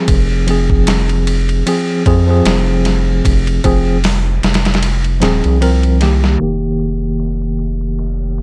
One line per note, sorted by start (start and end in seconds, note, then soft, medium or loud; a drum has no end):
0.00 0.44 F3 medium
0.00 0.44 C4 medium
0.00 0.45 G#4 medium
0.08 1.63 F1 medium
0.08 kick loud
0.08 ride medium
0.47 1.62 F3 medium
0.47 1.63 C4 medium
0.47 1.64 G#4 medium
0.47 ride medium
0.70 kick medium
0.87 snare loud
0.87 ride medium
1.09 ride soft
1.27 ride medium
1.49 ride soft
1.67 2.02 F3 medium
1.67 2.02 C4 medium
1.67 2.03 G#4 medium
1.67 ride medium
2.06 2.42 F2 medium
2.06 2.25 F3 medium
2.06 2.25 C4 medium
2.06 2.25 G#4 medium
2.06 kick medium
2.06 ride medium
2.27 3.59 F3 medium
2.27 3.60 C4 medium
2.27 3.61 G#4 medium
2.45 3.21 F1 loud
2.45 snare loud
2.45 ride medium
2.85 snare soft
2.85 ride medium
3.25 3.60 F1 loud
3.25 kick loud
3.25 ride medium
3.47 ride soft
3.64 4.40 F1 loud
3.64 3.96 F3 medium
3.64 3.96 C4 medium
3.64 3.97 G#4 medium
3.64 kick medium
3.64 ride medium
4.04 snare loud
4.04 open hi-hat medium
4.43 5.22 F1 medium
4.43 snare medium
4.43 ride medium
4.54 snare medium
4.54 ride medium
4.65 snare medium
4.65 ride medium
4.74 snare medium
4.74 ride medium
4.83 ride medium
5.04 ride soft
5.21 5.42 D#1 medium
5.21 5.57 F3 medium
5.21 5.57 C4 medium
5.21 5.58 G#4 medium
5.21 snare medium
5.21 ride medium
5.44 6.38 C2 medium
5.44 ride soft
5.61 5.97 F3 medium
5.61 5.97 C4 medium
5.61 5.97 A#4 medium
5.61 ride medium
5.83 ride soft
6.01 6.38 D#3 medium
6.01 6.40 A#3 medium
6.01 6.42 G4 medium
6.01 snare soft
6.01 ride medium
6.24 snare medium
6.39 8.42 F1 medium
6.39 8.42 D#3 medium
6.39 8.42 A#3 medium
6.39 8.42 G4 medium
6.39 ride medium
6.79 ride medium
7.19 ride medium
7.42 ride soft
7.59 ride medium
7.81 ride soft
7.99 ride medium
8.38 ride medium